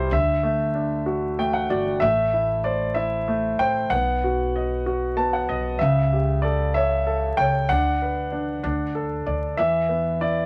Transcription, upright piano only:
0.00 0.14 B2 medium
0.00 0.13 C3 medium
0.00 0.13 G3 medium
0.00 0.14 E4 medium
0.11 1.97 D3 medium
0.43 1.37 A3 medium
0.75 1.97 D4 soft
1.06 1.69 F#4 medium
1.39 2.00 A3 medium
1.39 1.53 G5 medium
1.53 1.68 F#5 medium
1.70 2.01 F#4 medium
1.70 1.99 D5 medium
2.02 3.26 A3 medium
2.33 2.94 E4 soft
2.64 3.58 C5 medium
2.95 3.87 E4 medium
3.28 3.89 A3 medium
3.60 3.90 C5 medium
3.93 5.16 B3 medium
4.24 4.85 F#4 soft
4.56 5.47 D#5 medium
4.86 5.78 F#4 medium
5.17 5.78 B3 medium
5.17 5.31 A5 medium
5.33 5.48 F#5 medium
5.49 5.78 D#5 medium
5.81 7.66 C#3 medium
6.13 7.35 G4 medium
6.44 7.05 A4 medium
6.76 7.38 C#5 medium
7.07 7.68 A4 medium
7.40 7.69 C#5 medium
7.72 8.30 D4 medium
8.02 8.63 B4 soft
8.32 8.62 D4 medium
8.63 9.55 D4 medium
8.95 9.56 A4 medium
9.26 9.57 D5 medium
9.59 10.46 E3 medium
9.89 10.46 B3 soft
10.21 10.46 E4 medium

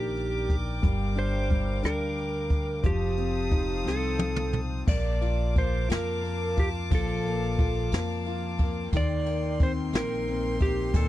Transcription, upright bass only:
0.00 0.80 A#1 medium
0.83 1.79 G1 medium
1.84 2.80 D2 medium
2.84 3.82 F1 medium
3.86 4.84 C2 medium
4.88 5.86 A#1 loud
5.90 6.87 F2 medium
6.91 7.88 A#1 loud
7.92 8.89 F2 medium
8.93 9.89 D#2 medium
9.93 10.90 A#1 medium
10.94 11.08 D#2 medium

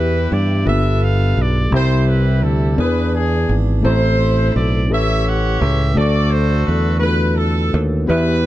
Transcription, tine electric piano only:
0.00 0.61 E3 medium
0.00 0.42 B3 medium
0.00 0.42 E4 medium
0.00 0.43 G4 medium
0.00 0.43 B4 medium
0.00 0.44 E5 medium
0.64 1.67 G2 medium
0.64 0.71 A#3 medium
0.64 1.48 D4 medium
0.64 1.49 F4 medium
0.64 1.49 G4 medium
0.64 1.50 A4 medium
0.71 1.51 B3 medium
1.70 2.74 C3 medium
1.70 2.54 G3 medium
1.70 2.55 C4 medium
1.70 2.55 E4 medium
1.70 2.56 G4 medium
1.70 2.56 E5 medium
2.76 3.80 E3 medium
2.76 3.60 B3 medium
2.76 3.61 D4 medium
2.76 3.61 E4 medium
2.76 3.62 G#4 medium
2.76 2.85 A#4 medium
2.86 3.65 B4 medium
3.81 4.86 A2 medium
3.81 4.66 A3 medium
3.81 4.67 C4 medium
3.81 4.67 E4 medium
3.81 4.67 A4 medium
3.81 4.68 C5 medium
4.88 5.92 A2 medium
4.88 5.72 C#4 medium
4.88 5.73 E4 medium
4.88 5.73 G4 medium
4.88 5.74 A4 medium
4.88 5.74 B4 medium
5.94 6.98 D3 medium
5.94 6.78 A3 medium
5.94 6.79 D4 medium
5.94 6.79 F#4 medium
5.94 6.80 A4 medium
5.94 6.80 D5 loud
7.00 7.84 A3 medium
7.00 7.85 D4 medium
7.00 7.08 F4 medium
7.00 7.86 A4 medium
7.00 7.86 B4 medium
7.08 7.88 F#4 medium
8.06 8.46 E3 medium
8.06 8.46 B3 medium
8.06 8.46 E4 medium
8.06 8.46 G4 medium
8.06 8.46 B4 medium
8.06 8.46 E5 medium

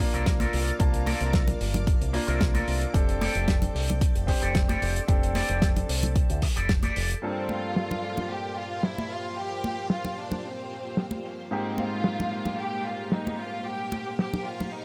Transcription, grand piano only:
0.00 0.76 A#3 medium
0.00 0.77 D4 medium
0.00 0.77 F4 medium
0.79 2.10 A#3 medium
0.79 2.11 D4 medium
0.79 2.11 F4 medium
0.79 2.11 A5 medium
2.13 2.91 A#3 medium
2.13 2.91 D4 medium
2.13 2.92 F4 medium
2.94 4.25 C4 medium
2.94 4.25 D4 medium
2.94 4.25 G4 medium
2.94 4.26 A4 medium
4.27 5.05 C4 medium
4.27 5.05 D4 medium
4.27 5.06 G4 medium
4.27 5.06 C5 medium
5.08 6.39 C4 medium
5.08 6.39 D4 medium
5.08 6.40 G4 medium
5.08 6.40 A4 medium
7.22 11.48 G2 medium
7.22 11.48 A#3 medium
7.22 11.48 C4 medium
7.22 11.48 D4 medium
7.22 11.49 F4 medium
7.22 11.49 A4 medium
11.51 14.85 G#2 medium
11.51 14.85 A#3 medium
11.51 14.85 C4 medium
11.51 14.85 D#4 medium
11.51 14.85 G4 medium

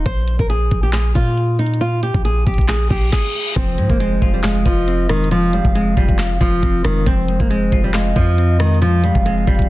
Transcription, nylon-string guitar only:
0.06 0.37 C5 loud
0.39 0.49 A#4 medium
0.50 0.81 G#4 medium
0.83 0.92 G4 medium
0.93 1.13 G#4 medium
1.15 1.56 F4 medium
1.59 1.79 D#4 medium
1.81 2.01 F4 loud
2.03 2.23 G4 medium
2.25 2.45 G#4 medium
2.47 2.67 G4 medium
2.69 2.88 G#4 medium
2.90 3.10 G4 medium
3.13 3.54 G#4 medium
3.56 3.88 C4 loud
3.90 3.99 A#3 medium
4.00 4.32 G#3 medium
4.34 4.43 G3 medium
4.44 4.64 G#3 medium
4.66 5.07 F3 medium
5.10 5.29 D#3 medium
5.31 5.51 F3 loud
5.53 5.73 G3 medium
5.75 5.95 G#3 medium
5.97 6.17 G3 medium
6.41 6.82 F3 medium
6.85 7.05 D#3 medium
7.06 7.38 C4 loud
7.40 7.49 A#3 medium
7.50 7.82 G#3 medium
7.84 7.93 G3 medium
7.94 8.14 G#3 medium
8.16 8.57 F3 loud
8.60 8.80 D#3 medium
8.82 9.02 F3 loud
9.04 9.24 G3 medium
9.26 9.45 G#3 medium
9.47 9.67 G3 medium

